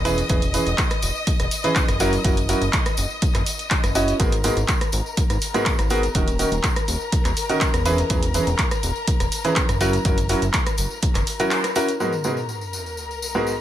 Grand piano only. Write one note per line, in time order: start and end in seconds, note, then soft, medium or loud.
0.05 0.16 E3 loud
0.05 0.16 C#4 medium
0.05 0.16 E4 loud
0.05 0.16 G#4 medium
0.05 0.16 B4 loud
0.29 0.40 E3 medium
0.29 0.40 C#4 medium
0.29 0.40 E4 medium
0.29 0.40 G#4 medium
0.29 0.40 B4 medium
0.54 0.65 E3 medium
0.54 0.65 C#4 medium
0.54 0.65 E4 medium
0.54 0.65 G#4 medium
0.54 0.65 B4 medium
1.64 1.80 E3 medium
1.64 1.80 C#4 medium
1.64 1.80 E4 medium
1.64 1.80 G#4 medium
1.64 1.80 B4 medium
2.00 2.11 F#3 loud
2.00 2.11 C#4 medium
2.00 2.11 E4 medium
2.00 2.11 F#4 medium
2.00 2.11 A#4 loud
2.24 2.35 F#3 medium
2.24 2.35 C#4 medium
2.24 2.35 E4 medium
2.24 2.35 F#4 medium
2.24 2.35 A#4 medium
2.49 2.60 F#3 medium
2.49 2.60 C#4 medium
2.49 2.60 E4 medium
2.49 2.60 F#4 medium
2.49 2.60 A#4 medium
3.95 4.12 C#4 loud
3.95 4.12 E4 medium
3.95 4.12 F#4 medium
3.95 4.12 D#5 loud
4.20 4.30 G#2 medium
4.20 4.30 B3 medium
4.20 4.30 F#4 medium
4.20 4.30 G#4 medium
4.20 4.30 A#4 medium
4.44 4.55 G#2 medium
4.44 4.55 B3 medium
4.44 4.55 F#4 medium
4.44 4.55 G#4 medium
4.44 4.55 A#4 medium
5.54 5.71 G#2 medium
5.54 5.71 B3 medium
5.54 5.71 F#4 medium
5.54 5.71 G#4 medium
5.54 5.71 A#4 medium
5.90 6.01 B3 loud
5.90 6.01 F#4 medium
5.90 6.01 G#4 medium
5.90 6.01 A#4 loud
6.15 6.26 D#3 medium
6.15 6.26 C#4 medium
6.15 6.26 D#4 medium
6.15 6.26 F#4 medium
6.15 6.26 A#4 medium
6.39 6.50 D#3 medium
6.39 6.50 C#4 medium
6.39 6.50 D#4 medium
6.39 6.50 F#4 medium
6.39 6.50 A#4 medium
7.49 7.66 D#3 medium
7.49 7.66 C#4 medium
7.49 7.66 D#4 medium
7.49 7.66 F#4 medium
7.49 7.66 A#4 medium
7.86 7.96 E3 loud
7.86 7.96 C#4 medium
7.86 7.96 E4 medium
7.86 7.96 G#4 medium
7.86 7.96 B4 loud
8.10 8.21 E3 medium
8.10 8.21 C#4 medium
8.10 8.21 E4 medium
8.10 8.21 G#4 medium
8.10 8.21 B4 medium
8.34 8.45 E3 medium
8.34 8.45 C#4 medium
8.34 8.45 E4 medium
8.34 8.45 G#4 medium
8.34 8.45 B4 medium
9.45 9.61 E3 medium
9.45 9.61 C#4 medium
9.45 9.61 E4 medium
9.45 9.61 G#4 medium
9.45 9.61 B4 medium
9.81 9.91 F#3 loud
9.81 9.91 C#4 medium
9.81 9.91 E4 medium
9.81 9.92 F#4 loud
9.81 9.92 A#4 loud
10.05 10.16 F#3 medium
10.05 10.16 C#4 medium
10.05 10.16 E4 medium
10.05 10.16 F#4 medium
10.05 10.16 A#4 medium
10.29 10.40 F#3 medium
10.29 10.40 C#4 medium
10.29 10.40 E4 medium
10.29 10.40 F#4 medium
10.29 10.40 A#4 medium
11.40 11.56 F#3 medium
11.40 11.56 C#4 medium
11.40 11.56 E4 medium
11.40 11.56 F#4 medium
11.40 11.56 A#4 medium
11.76 11.87 C#4 loud
11.76 11.87 E4 medium
11.76 11.87 F#4 medium
11.76 11.87 A#4 loud
12.00 12.11 G#2 medium
12.00 12.11 B3 medium
12.00 12.11 F#4 medium
12.00 12.11 G#4 medium
12.00 12.11 A#4 medium
12.25 12.35 G#2 medium
12.25 12.35 B3 medium
12.25 12.35 F#4 medium
12.25 12.35 G#4 medium
12.25 12.35 A#4 medium
13.35 13.51 G#2 medium
13.35 13.51 B3 medium
13.35 13.51 F#4 medium
13.35 13.51 G#4 medium
13.35 13.51 A#4 medium